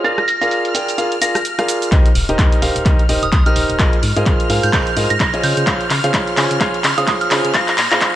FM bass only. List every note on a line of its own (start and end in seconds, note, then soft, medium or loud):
1.92 2.02 D#2 medium
2.15 2.25 D#1 medium
2.29 2.36 D#1 medium
2.39 2.49 D#2 medium
2.62 2.72 D#1 medium
2.76 2.83 D#1 medium
2.86 2.96 D#2 medium
3.09 3.19 D#1 medium
3.23 3.30 D#1 medium
3.33 3.42 D#2 medium
3.56 3.66 D#1 medium
3.70 3.77 D#1 medium
3.79 3.89 G#1 loud
4.03 4.13 G#2 medium
4.16 4.24 G#2 medium
4.26 4.36 G#1 medium
4.50 4.60 G#2 medium
4.63 4.70 G#2 medium
4.73 4.83 G#1 loud
4.96 5.06 G#2 medium
5.10 5.17 G#2 medium
5.20 5.30 G#1 medium
5.43 5.53 C#3 medium
5.57 5.64 C#3 medium
5.67 5.77 C#2 loud
5.90 6.00 C#3 loud
6.04 6.11 C#3 medium
6.14 6.24 C#2 medium
6.37 6.47 C#3 medium
6.51 6.58 C#3 medium
6.61 6.70 C#2 medium
6.84 6.94 C#3 medium
6.98 7.05 C#3 medium
7.07 7.17 C#2 medium
7.31 7.41 C#3 medium
7.45 7.52 C#3 medium
7.54 7.64 A#1 loud
7.78 7.88 A#2 medium
7.91 7.99 A#2 medium
8.01 8.11 A#1 medium